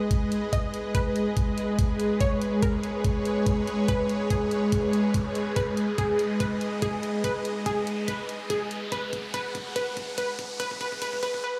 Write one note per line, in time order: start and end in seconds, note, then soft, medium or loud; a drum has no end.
0.00 11.40 G#3 medium
0.00 11.40 G#4 medium
0.00 11.40 B4 medium
0.00 2.20 D#5 medium
0.00 riser medium
0.11 kick loud
0.11 closed hi-hat medium
0.32 closed hi-hat medium
0.53 0.79 D#5 loud
0.53 kick medium
0.53 closed hi-hat medium
0.74 closed hi-hat medium
0.95 1.14 B4 medium
0.95 kick loud
0.95 closed hi-hat medium
1.16 closed hi-hat medium
1.37 kick medium
1.37 closed hi-hat medium
1.58 closed hi-hat medium
1.79 kick loud
1.79 closed hi-hat medium
2.00 closed hi-hat soft
2.21 2.47 C#5 loud
2.21 5.55 C#5 medium
2.21 kick medium
2.21 closed hi-hat medium
2.42 closed hi-hat medium
2.62 2.82 A#4 medium
2.62 kick loud
2.62 closed hi-hat medium
2.83 closed hi-hat medium
3.04 kick loud
3.04 closed hi-hat medium
3.25 closed hi-hat soft
3.46 kick loud
3.46 closed hi-hat medium
3.67 closed hi-hat soft
3.88 4.15 B4 loud
3.88 kick loud
3.88 closed hi-hat medium
4.09 closed hi-hat medium
4.30 4.50 G#4 medium
4.30 kick loud
4.30 closed hi-hat medium
4.51 closed hi-hat soft
4.72 kick medium
4.72 closed hi-hat medium
4.93 closed hi-hat medium
5.14 kick loud
5.14 closed hi-hat medium
5.35 closed hi-hat soft
5.56 5.82 B4 medium
5.56 8.91 D#5 medium
5.56 kick loud
5.56 closed hi-hat medium
5.77 closed hi-hat medium
5.98 6.18 G#4 medium
5.98 kick loud
5.98 closed hi-hat medium
6.19 closed hi-hat soft
6.40 6.66 B4 medium
6.40 kick loud
6.40 closed hi-hat medium
6.61 closed hi-hat soft
6.82 7.02 G#4 medium
6.82 kick loud
6.82 closed hi-hat medium
7.03 closed hi-hat soft
7.24 7.50 B4 loud
7.24 kick loud
7.24 closed hi-hat medium
7.45 closed hi-hat medium
7.66 7.86 G#4 medium
7.66 kick loud
7.66 closed hi-hat medium
7.87 closed hi-hat soft
8.08 8.34 B4 medium
8.08 kick loud
8.08 closed hi-hat medium
8.29 closed hi-hat medium
8.50 8.69 G#4 medium
8.50 kick loud
8.50 closed hi-hat medium
8.71 closed hi-hat medium
8.92 9.18 B4 loud
8.92 11.43 F#5 medium
8.92 kick loud
8.92 closed hi-hat medium
9.13 kick loud
9.13 closed hi-hat medium
9.34 9.60 B4 loud
9.34 kick loud
9.34 closed hi-hat medium
9.55 kick loud
9.55 closed hi-hat medium
9.76 10.02 B4 medium
9.76 kick loud
9.76 closed hi-hat medium
9.97 kick loud
9.97 closed hi-hat medium
10.18 10.44 B4 medium
10.18 kick loud
10.18 closed hi-hat medium
10.39 kick loud
10.39 closed hi-hat medium
10.60 10.79 B4 loud
10.60 kick loud
10.60 closed hi-hat medium
10.71 kick loud
10.81 11.00 B4 loud
10.81 kick loud
10.81 closed hi-hat medium
10.92 kick loud
11.02 11.21 B4 loud
11.02 kick loud
11.02 closed hi-hat medium
11.13 kick medium
11.23 11.42 B4 loud
11.23 kick loud
11.23 closed hi-hat medium
11.34 kick loud
11.44 11.60 B4 medium
11.44 reverse cymbal medium